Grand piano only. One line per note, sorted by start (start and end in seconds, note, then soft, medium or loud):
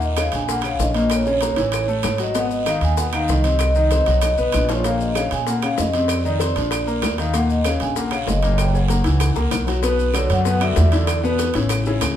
0.00 0.12 A#2 medium
0.00 0.12 A#3 medium
0.17 0.43 C#3 medium
0.17 0.43 C#4 medium
0.48 0.61 A#2 medium
0.48 0.61 A#3 medium
0.64 0.89 C#3 medium
0.64 0.90 C#4 medium
0.95 1.20 A#2 medium
0.95 1.21 A#3 medium
1.26 1.39 C#3 medium
1.26 1.39 C#4 medium
1.42 1.55 A#3 medium
1.42 1.55 A#4 medium
1.57 1.83 E3 medium
1.57 1.83 E4 medium
1.88 2.14 A3 medium
1.88 2.14 A4 medium
2.19 2.32 F#3 medium
2.19 2.33 F#4 medium
2.34 2.60 B2 medium
2.34 2.61 B3 medium
2.66 2.92 D#3 medium
2.66 2.92 D#4 medium
2.98 3.11 B2 medium
2.98 3.11 B3 medium
3.13 3.39 D#3 medium
3.13 3.39 D#4 medium
3.44 3.70 C3 medium
3.44 3.70 C4 medium
3.76 3.88 D#3 medium
3.76 3.88 D#4 medium
3.91 4.04 C4 medium
3.91 4.04 C5 medium
4.07 4.32 F#3 medium
4.07 4.32 F#4 medium
4.38 4.63 B3 medium
4.38 4.64 B4 medium
4.69 4.82 F3 medium
4.69 4.82 F4 medium
4.85 5.10 A#2 medium
4.85 5.10 A#3 medium
5.16 5.42 C#3 medium
5.16 5.42 C#4 medium
5.47 5.60 A#2 medium
5.47 5.60 A#3 medium
5.63 5.88 C#3 medium
5.63 5.88 C#4 medium
5.94 6.19 C3 medium
5.94 6.19 C4 medium
6.25 6.38 D#3 medium
6.25 6.38 D#4 medium
6.40 6.53 C4 medium
6.40 6.53 C5 medium
6.56 6.81 F3 medium
6.56 6.82 F4 medium
6.87 7.13 A#3 medium
6.87 7.13 A#4 medium
7.18 7.31 D#3 medium
7.18 7.31 D#4 medium
7.34 7.60 A#2 medium
7.34 7.60 A#3 medium
7.65 7.91 C#3 medium
7.65 7.91 C#4 medium
7.96 8.09 A#2 medium
7.96 8.09 A#3 medium
8.12 8.37 C#3 medium
8.12 8.37 C#4 medium
8.43 8.68 A#2 medium
8.43 8.69 A#3 medium
8.74 8.87 C#3 medium
8.74 8.87 C#4 medium
8.89 9.02 A#3 medium
8.89 9.03 A#4 medium
9.04 9.30 E3 medium
9.04 9.30 E4 medium
9.36 9.62 A#3 medium
9.36 9.62 A#4 medium
9.67 9.80 F#3 medium
9.67 9.81 F#4 medium
9.83 10.09 B2 medium
9.83 10.09 B3 medium
9.83 10.09 B4 medium
10.14 10.40 D3 medium
10.14 10.40 D4 medium
10.14 10.40 F#4 medium
10.45 10.58 B2 medium
10.45 10.58 B3 medium
10.45 10.59 B4 medium
10.61 10.86 D3 medium
10.61 10.87 D4 medium
10.61 10.87 F#4 medium
10.92 11.18 D3 medium
10.92 11.18 D4 medium
10.92 11.18 E4 medium
11.23 11.49 B2 medium
11.23 11.49 B3 medium
11.23 11.50 B4 medium
11.55 11.80 C#3 medium
11.55 11.80 C#4 medium
11.55 11.80 E4 medium
11.87 12.12 C#3 medium
11.87 12.12 C#4 medium
11.87 12.12 E4 medium